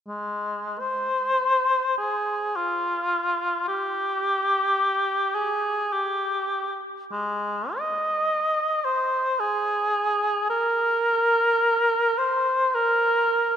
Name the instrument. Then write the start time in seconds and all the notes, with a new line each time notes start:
cor anglais
0.07 G#3
0.79 C5
1.98 G#4
2.56 F4
3.68 G4
5.34 G#4
5.93 G4
7.12 G#3
7.76 D#5
8.85 C5
9.40 G#4
10.50 A#4
12.18 C5
12.74 A#4